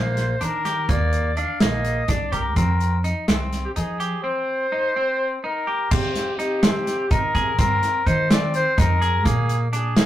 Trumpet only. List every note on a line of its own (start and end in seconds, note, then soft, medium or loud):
0.00 0.45 C5 medium
0.44 0.92 A#4 medium
0.90 1.39 D5 medium
1.38 1.63 F5 medium
1.61 2.11 D#5 medium
2.10 2.34 D5 medium
2.33 2.56 A#4 medium
2.57 3.01 A#4 medium
3.65 3.70 G4 medium
3.76 4.21 G#4 medium
4.23 5.39 C5 medium
5.44 5.93 A#4 medium
5.92 6.39 G4 medium
6.39 7.12 G4 medium
7.11 7.59 A#4 medium
7.59 8.08 A#4 medium
8.06 8.30 C5 medium
8.31 8.53 D5 medium
8.55 8.81 C5 medium
8.80 9.27 A#4 medium
9.26 9.60 G#4 medium
9.74 10.06 G#4 medium